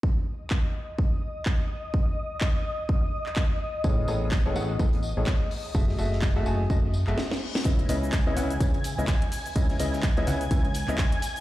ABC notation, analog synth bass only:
X:1
M:4/4
L:1/16
Q:"Swing 16ths" 1/4=126
K:C#m
V:1 name="Analog synth bass" clef=bass
z16 | z16 | A,,,2 A,,,3 A,,, A,,,2 A,,,3 A,,, z4 | F,,,2 F,,,3 F,,, F,,,2 F,,,3 F,,, z4 |
C,,2 C,,3 C,, C,,2 C,,3 C,, z4 | C,,2 C,,3 C,, C,,2 C,,3 C,, z4 |]